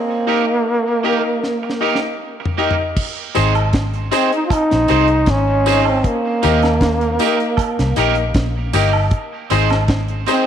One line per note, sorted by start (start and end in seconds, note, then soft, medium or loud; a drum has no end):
0.00 2.16 A#3 loud
0.27 0.44 A#3 medium
0.27 0.48 D#4 medium
0.27 0.44 D#4 medium
0.27 0.48 G4 medium
0.27 0.45 G4 medium
0.27 0.48 A#4 medium
0.27 0.45 A#4 medium
0.27 0.49 D#5 medium
0.86 0.93 A#4 soft
0.86 0.93 D#5 soft
1.03 1.21 A#3 medium
1.03 1.25 D#4 medium
1.03 1.21 D#4 medium
1.03 1.25 G4 medium
1.03 1.22 G4 medium
1.03 1.25 A#4 medium
1.03 1.22 A#4 medium
1.03 1.25 D#5 medium
1.44 snare medium
1.63 muted clean electric guitar stroke soft
1.70 snare medium
1.81 1.98 A#3 medium
1.81 2.02 D#4 medium
1.81 1.98 D#4 medium
1.81 2.02 G4 medium
1.81 1.99 G4 medium
1.81 2.02 A#4 medium
1.81 1.99 A#4 loud
1.81 2.02 D#5 medium
1.95 snare medium
2.40 muted clean electric guitar stroke soft
2.45 floor tom medium
2.57 2.75 A#3 medium
2.57 2.75 D#4 medium
2.57 2.79 D#4 medium
2.57 2.79 G4 medium
2.57 2.75 G4 medium
2.57 2.79 A#4 medium
2.57 2.75 A#4 medium
2.57 2.79 D#5 loud
2.71 floor tom medium
2.96 kick loud
2.96 crash loud
3.35 4.09 G#1 medium
3.35 3.52 C4 medium
3.35 3.56 D#4 medium
3.35 3.52 D#4 medium
3.35 3.56 G#4 medium
3.35 3.53 G#4 loud
3.35 3.56 C5 medium
3.35 3.53 C5 loud
3.35 3.56 D#5 loud
3.35 closed hi-hat medium
3.35 tambourine medium
3.55 closed hi-hat soft
3.55 high woodblock medium
3.73 kick loud
3.73 snare loud
3.73 closed hi-hat medium
3.93 closed hi-hat soft
4.11 4.29 C4 medium
4.11 4.32 C4 loud
4.11 4.33 D#4 loud
4.11 4.29 D#4 medium
4.11 4.33 G#4 medium
4.11 4.29 G#4 medium
4.11 4.33 C5 medium
4.11 4.30 C5 loud
4.11 4.33 D#5 loud
4.11 closed hi-hat medium
4.11 tambourine medium
4.32 4.44 D#4 loud
4.32 closed hi-hat medium
4.46 4.55 F4 medium
4.50 5.32 D#4 loud
4.50 kick loud
4.50 closed hi-hat medium
4.50 high woodblock medium
4.71 4.89 A#1 medium
4.71 snare medium
4.71 closed hi-hat medium
4.88 5.26 C2 loud
4.88 5.06 C4 medium
4.88 5.10 D#4 medium
4.88 5.06 D#4 medium
4.88 5.10 G#4 medium
4.88 5.06 G#4 medium
4.88 5.10 C5 medium
4.88 5.07 C5 loud
4.88 5.11 D#5 loud
4.88 closed hi-hat medium
4.88 tambourine medium
5.08 closed hi-hat soft
5.26 6.01 G#1 loud
5.26 kick loud
5.26 snare loud
5.26 closed hi-hat medium
5.30 5.90 C#4 loud
5.66 5.83 C4 medium
5.66 5.87 D#4 medium
5.66 5.83 D#4 medium
5.66 5.87 G#4 medium
5.66 5.84 G#4 loud
5.66 5.87 C5 medium
5.66 5.84 C5 medium
5.66 5.87 D#5 loud
5.66 open hi-hat medium
5.66 tambourine medium
5.85 6.08 C4 loud
5.85 high woodblock medium
6.04 8.36 A#3 loud
6.04 kick loud
6.04 closed hi-hat medium
6.43 7.17 D#2 loud
6.43 6.60 A#3 medium
6.43 6.64 D#4 medium
6.43 6.60 D#4 loud
6.43 6.64 G4 medium
6.43 6.60 G4 medium
6.43 6.64 A#4 medium
6.43 6.61 A#4 loud
6.43 6.64 D#5 loud
6.43 closed hi-hat medium
6.43 tambourine medium
6.62 snare medium
6.62 closed hi-hat medium
6.62 high woodblock medium
6.81 kick loud
6.81 snare loud
6.81 closed hi-hat medium
7.01 closed hi-hat soft
7.19 7.37 A#3 medium
7.19 7.40 D#4 medium
7.19 7.37 D#4 medium
7.19 7.41 G4 medium
7.19 7.37 G4 medium
7.19 7.41 A#4 medium
7.19 7.38 A#4 medium
7.19 7.41 D#5 loud
7.19 closed hi-hat medium
7.19 tambourine medium
7.40 closed hi-hat soft
7.57 kick loud
7.57 closed hi-hat medium
7.57 high woodblock medium
7.79 7.96 C2 medium
7.79 snare medium
7.79 closed hi-hat medium
7.96 8.34 A#1 medium
7.96 8.14 A#3 medium
7.96 8.18 D#4 medium
7.96 8.14 D#4 medium
7.96 8.18 G4 medium
7.96 8.15 G4 medium
7.96 8.18 A#4 medium
7.96 8.15 A#4 loud
7.96 8.18 D#5 loud
7.96 closed hi-hat medium
7.96 tambourine medium
8.15 closed hi-hat soft
8.34 8.72 A#1 medium
8.34 kick loud
8.34 snare loud
8.34 closed hi-hat medium
8.73 9.11 G1 loud
8.73 8.91 A#3 medium
8.73 8.95 D#4 medium
8.73 8.91 D#4 medium
8.73 8.95 G4 medium
8.73 8.91 G4 medium
8.73 8.95 A#4 medium
8.73 8.91 A#4 medium
8.73 8.95 D#5 loud
8.73 open hi-hat medium
8.73 tambourine medium
8.93 high woodblock medium
9.11 kick loud
9.11 closed hi-hat medium
9.50 10.24 G#1 loud
9.50 9.67 C4 medium
9.50 9.72 D#4 loud
9.50 9.68 D#4 loud
9.50 9.72 G#4 medium
9.50 9.68 G#4 loud
9.50 9.72 C5 medium
9.50 9.68 C5 loud
9.50 9.72 D#5 loud
9.50 closed hi-hat medium
9.50 tambourine medium
9.70 snare medium
9.70 closed hi-hat medium
9.70 high woodblock medium
9.88 kick loud
9.88 snare loud
9.88 closed hi-hat medium
10.08 closed hi-hat soft
10.26 10.44 C4 medium
10.26 10.44 D#4 medium
10.26 10.46 D#4 loud
10.26 10.46 G#4 medium
10.26 10.45 G#4 loud
10.26 10.46 C5 medium
10.26 10.45 C5 loud
10.26 10.46 D#5 loud
10.26 closed hi-hat medium
10.26 tambourine medium
10.31 10.46 C4 loud